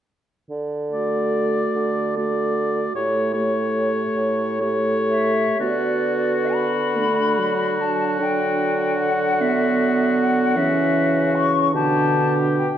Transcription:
0.50 D3
0.91 A3 F#4 D5
1.76 D3
2.17 A3 F#4 D5
2.95 A2 A3 G4 C#5
3.34 A3 G4 C#5
4.17 A2
4.61 A3 G4 C#5
5.10 E5
5.60 D3 B3 F#4 D5
6.53 B5
6.96 A3 D4
7.39 F#3
7.81 F#3 A5
8.20 D3 D4 G5
9.01 F#5
9.41 B3 E5
10.19 F#5
10.56 C#3 E3 C#4 E5
11.35 C#6
11.74 B2 D3 D4 G4 A5
12.58 G5

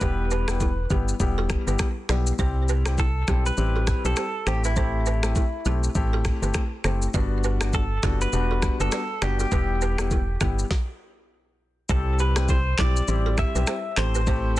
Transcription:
Already playing: B4
0.01 E1 G3 B3 E4 G4 B4, kick, shaker
0.31 G4 B4, shaker
0.48 G3 B3 E4 G4, finger snap, cross-stick, shaker
0.60 E4 A4, kick, shaker
0.90 G1 G3 B3 E4 G4, kick, shaker
1.08 shaker
1.20 E1 G3 B3 E4 G4, kick, shaker
1.38 F#4 A4
1.50 finger snap, kick, cross-stick, shaker
1.67 G1 G3 B3 E4 G4 B4, shaker
1.79 finger snap, kick, cross-stick, shaker
2.09 B1 G3 B3 E4 G4 B4 D5, finger snap, cross-stick, shaker
2.27 shaker
2.39 C2 G3 C4 E4 G4 C5, kick, shaker
2.68 G4 B4, shaker
2.86 G3 C4 E4 G4, finger snap, cross-stick, shaker
2.98 E4 A4, kick, shaker
3.28 B1 G3 C4 E4 G4, finger snap, kick, cross-stick, shaker
3.46 B4, shaker
3.57 A1 G3 C4 E4 G4, shaker
3.76 F#4 A4
3.87 finger snap, kick, cross-stick, shaker
4.04 B1 G3 C4 E4 G4 A4 B4, shaker
4.16 G4 C5, finger snap, cross-stick, shaker
4.47 A1 A3 C4 E4 G4 A4 C5, finger snap, cross-stick, shaker
4.64 E4 G4 B4, shaker
4.76 A3 C4 E4 G4 A4 C5, kick, shaker
5.06 G4 B4, shaker
5.23 A3 C4 E4 G4, finger snap, cross-stick, shaker
5.36 E4 A4, kick, shaker
5.65 B1 A3 C4 E4 G4, shaker
5.84 shaker
5.95 A1 A3 C4 E4 G4, kick, shaker
6.13 F#4 A4
6.25 finger snap, kick, cross-stick, shaker
6.42 G1 A3 C4 E4 G4 B4, shaker
6.54 finger snap, kick, cross-stick, shaker
6.84 F#1 A3 C4 E4 G4 A4 C5, finger snap, cross-stick, shaker
7.02 shaker
7.14 G1 G3 B3 D4 F#4 B4 D5, kick, shaker
7.44 G4 B4, shaker
7.61 G3 B3 D4 F#4, finger snap, cross-stick, shaker
7.73 F#4 A4, kick, shaker
8.03 F#1 G3 B3 D4 E4 F#4 G4, finger snap, kick, cross-stick, shaker
8.21 B4, shaker
8.33 E1 G3 B3 D4 F#4, shaker
8.51 F#4 A4
8.62 finger snap, kick, cross-stick, shaker
8.80 F#1 G3 B3 D4 F#4 G4 A4 B4, shaker
8.92 B4 D5, finger snap, cross-stick, shaker
9.22 F#1 G3 B3 D4 F#4 G4 B4 D5, finger snap, cross-stick, shaker
9.40 F#4 G4 A4, shaker
9.52 E1 G3 B3 E4 G4 B4, kick, shaker
9.81 G4 B4, shaker
9.98 G3 B3 E4 G4, finger snap, cross-stick, shaker
10.11 E4 A4, kick, shaker
10.41 G1 G3 B3 E4 G4, finger snap, kick, cross-stick, shaker
10.59 shaker
10.71 kick, snare
11.89 C2 G3 C4 E4 G4 A4 C5, kick, shaker
12.19 G4 B4, shaker
12.36 G3 C4 E4 G4, finger snap, cross-stick, shaker
12.48 E4 A4 C5, kick, shaker
12.78 B1 G3 C4 E4 G4 D5, finger snap, kick, cross-stick, clap, shaker
12.97 shaker
13.08 A1 G3 C4 E4 G4, shaker
13.26 F#4 A4
13.38 E5, finger snap, kick, cross-stick, shaker
13.55 B1 G3 C4 E4 G4 B4, shaker
13.67 G4 C5, finger snap, cross-stick, shaker
13.97 A1 A3 C4 E4 G4 A4 C5, finger snap, cross-stick, clap, shaker
14.15 G4 B4, shaker
14.27 A3 C4 E4 G4 A4 C5, kick, shaker
14.57 shaker

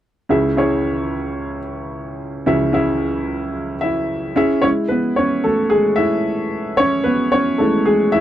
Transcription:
0.29 C#2 C#3 C#4 E4 G#4 E5
0.57 C#4 E4 G#4 C#5
2.46 C#2 C#3 C#4 E4 G#4 E5
2.73 C#4 E4 G#4 E5
3.81 E4 E5
4.36 C#4 E4 G#4 E5
4.62 G#3 C#4 E4 C#5
4.88 B3 B4
5.16 C#4 C#5
5.44 A3 A4
5.70 G#3 G#4
5.96 E4 E5
6.77 C#4 C#5
7.04 B3 B4
7.32 C#4 C#5
7.58 G#3 A3 C#4 E4 A4
7.86 G#3 G#4
8.12 E4 E5

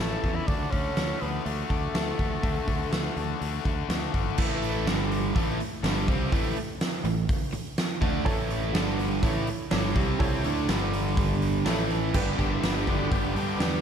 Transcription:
0.00 A1 A2 E3 A3 C#4 E4
0.23 E2 A2 E3 A3 C#4 E4, kick, open hi-hat
0.35 E4
0.47 D2 D3 A3 D4 F#4, kick, open hi-hat
0.71 D2 D3 A3 C#4 D4 F#4, kick, open hi-hat
0.96 D2 D3 A3 D4 F#4, snare, open hi-hat
1.20 D2 D3 A3 B3 D4 F#4, open hi-hat
1.45 D2 D3 A3 D4 F#4, open hi-hat
1.70 D2 D3 A3 D4 F#4, kick, open hi-hat
1.94 D2 D3 A3 D4 F#4, snare, open hi-hat
2.18 D2 D3 A3 D4 F#4, kick, open hi-hat
2.42 D2 D3 A3 D4 F#4, kick, open hi-hat
2.66 D2 D3 A3 D4 F#4, kick, open hi-hat
2.91 D2 D3 A3 D4 F#4, snare, open hi-hat
3.16 D2 D3 A3 D4 F#4, open hi-hat
3.39 D2 D3 A3 D4 F#4, open hi-hat
3.64 D2 D3 A3 D4 F#4, kick, open hi-hat
3.89 D2 D3 A3 D4 F#4, snare, open hi-hat
4.12 G1 D3 A3 D4 F#4, kick, open hi-hat
4.37 A1 A2 E3 A3, kick, crash
4.63 open hi-hat
4.85 G1 G2 D3 G3, snare, open hi-hat
5.12 open hi-hat
5.34 A1 A2 E3 A3, kick, open hi-hat
5.60 open hi-hat
5.83 G1 G2 D3 G3, snare, open hi-hat
6.08 C2 C3 G3 C4, kick, open hi-hat
6.31 A1 A2 E3 A3, kick, open hi-hat
6.56 muted fingered electric bass stroke, muted overdriven electric guitar stroke, open hi-hat
6.81 snare, open hi-hat
7.04 A1 A2 E3, open hi-hat
7.29 kick, open hi-hat
7.53 muted fingered electric bass stroke, muted overdriven electric guitar stroke, open hi-hat
7.78 snare, open hi-hat
8.01 D2 D3 A3 D4, kick, open hi-hat
8.25 A1 A2 E3 A3 E4 A4 C#5, kick, open hi-hat
8.50 open hi-hat
8.73 G1 G2 D3 G3 D4 G4 D5, snare, open hi-hat
8.99 open hi-hat
9.22 A1 A2 E3 A3 E4 A4 C#5, kick, open hi-hat
9.47 open hi-hat
9.71 G1 G2 D3 G3 E4 A4 C#5, snare, open hi-hat
9.95 C2 C3 G3 C4, kick, open hi-hat
10.19 C2 C3 G3 C4 E4 A4 C#5, kick, open hi-hat
10.43 D2 D3 A3 D4, open hi-hat
10.68 G1 G2 D3 G3 D4 G4 D5, snare, open hi-hat
10.93 open hi-hat
11.16 D4 G4 D5, kick, open hi-hat
11.42 open hi-hat
11.65 A1 A2 E3 A3 E4 A4 C#5, snare, open hi-hat
11.90 open hi-hat
12.13 G1 G2 D3 G3 B3 D4 G4 B4, kick, crash
12.37 G1 G2 D3 G3 B3 D4 G4, kick, open hi-hat
12.53 E4
12.62 G1 G2 D3 G3 B3 D4 F#4 G4 B4, snare, open hi-hat
12.76 G4
12.86 G2 D3 G3 B3 D4 G4, kick, open hi-hat
12.90 E4
13.01 F#4
13.10 G1 G2 D3 G3 B3 D4 G4 B4, kick, open hi-hat
13.35 G2 D3 G3 B3 D4 G4, open hi-hat
13.58 E2 G2 D3 G3 B3 D4 G4 B4, snare, open hi-hat

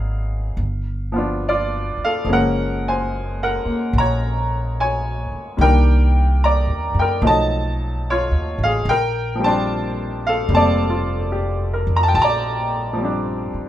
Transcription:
Already playing: G#1 F#3 A#3 B3 D#4 G#4 F5
0.57 G1
1.12 F3 B3 F4
1.18 D4
1.49 F4 D5
1.97 muted upright bass stroke
2.04 A4 F5
2.24 F#1 F3 G#3 A#3
2.29 C#4 A#4 F#5
2.88 C5 G#5
3.43 A#4 F#5
3.65 A#3, muted upright bass stroke
3.93 A#1
3.98 C#5 A#5
4.80 C#5 G#5
5.32 muted upright bass stroke
5.57 C2 D#3 G3 A#3
5.61 D4 A#4 G5
6.44 D5 A#5
6.67 D#2
6.94 F#2
6.99 A#4 G5
7.22 B1 F3 F#3 A3 D#4
7.27 D#5 A5
8.10 F4 C#5
8.31 D#2
8.58 A1
8.63 G#4 F5
8.85 A#1 G5
8.90 A#4
9.35 F3
9.40 G3 C4
9.44 D4 C5 A5
10.27 A4 F5
10.49 F1 G3 A#3
10.53 C4 D5 A5
10.90 F4
11.32 G4
11.73 A#4
11.87 F2
11.96 A#5
12.03 A5
12.08 G5
12.14 A#1 A5
12.22 D5 A#5
12.93 F3
12.98 G3 C4
13.05 D4
13.54 muted upright bass stroke

